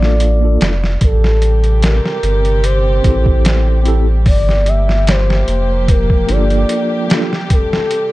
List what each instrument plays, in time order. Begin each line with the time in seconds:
Already playing: sub bass A1, soft synth lead D5
0.00 tine electric piano A#3 D4 F4, snare
0.05 tine electric piano A4
0.20 closed hi-hat
0.40 tine electric piano A#3 D4 F4
0.45 tine electric piano A4
0.61 sub bass F1, snare, closed hi-hat
0.84 snare
1.01 sub bass A1, string section C3 G3 G4, soft synth lead A4, kick, closed hi-hat
1.24 snare
1.42 closed hi-hat
1.64 closed hi-hat
1.83 soft synth lead A#4, snare, closed hi-hat
2.05 snare
2.23 sub bass G1, closed hi-hat
2.45 closed hi-hat
2.64 soft synth lead C5, closed hi-hat
3.02 sub bass A1, tine electric piano C4 E4 G4, kick, closed hi-hat
3.07 tine electric piano A4
3.26 kick
3.45 snare, closed hi-hat
3.83 tine electric piano C4 E4 G4, closed hi-hat
3.88 tine electric piano A4
4.26 sub bass G1, string section F3 A#3 G4, soft synth lead D5, kick, open hi-hat
4.49 snare
4.66 soft synth lead E5, closed hi-hat
4.89 snare
5.07 soft synth lead C5, snare, closed hi-hat
5.30 snare
5.48 sub bass F1, closed hi-hat
5.88 soft synth lead A#4, kick, closed hi-hat
6.10 kick
6.27 sub bass G1, tine electric piano A#3 D4 F4, soft synth lead D5, closed hi-hat
6.32 tine electric piano A4
6.50 closed hi-hat
6.69 closed hi-hat
7.08 tine electric piano A#3 D4 F4, snare, closed hi-hat
7.13 tine electric piano A4
7.33 snare
7.50 string section C3 G3, soft synth lead A4, kick, closed hi-hat
7.73 snare
7.91 closed hi-hat